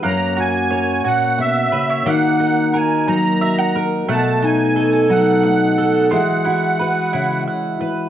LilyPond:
<<
  \new Staff \with { instrumentName = "Accordion" } { \time 6/8 \key fis \mixolydian \tempo 4. = 59 ais''8 gis''4 fis''8 e''4 | fis''4 gis''8 ais''4 r8 | a''8 gis''4 fis''4. | fis''2 r4 | }
  \new Staff \with { instrumentName = "Mandolin" } { \time 6/8 \key fis \mixolydian <ais fis''>8 fis'8 cis''8 fis'8 fis''8 b'16 cis''16 | <ais fis''>8 dis'8 ais'8 dis'8 e''16 fis''16 ais'8 | <a fis''>8 dis'8 a'8 dis'8 fis''8 a'8 | <gis fis''>8 e'8 b'8 e'8 fis''8 b'8 | }
  \new Staff \with { instrumentName = "Tonewheel organ" } { \time 6/8 \key fis \mixolydian << { cis''2. | dis''2. | dis''2. | e''2. | } \\ { <ais fis'>2.~ | <ais fis'>2. | <b a'>2. | <gis fis'>2. | } >> }
  \new Staff \with { instrumentName = "Steel-string acoustic guitar" } { \time 6/8 \key fis \mixolydian << { cis'8 fis'8 ais'2 | fis'8 ais'8 ais'8 ais'8 fis'8 ais'8 | a8 dis'8 fis'16 a'16 dis'8 a8 a'8 | e'8 fis'8 fis'2 | } \\ { fis,4. ais,8 b,8 cis8 | dis4. fis4. | b,4. fis4. | e4. cis8 r8 e8 | } >> }
>>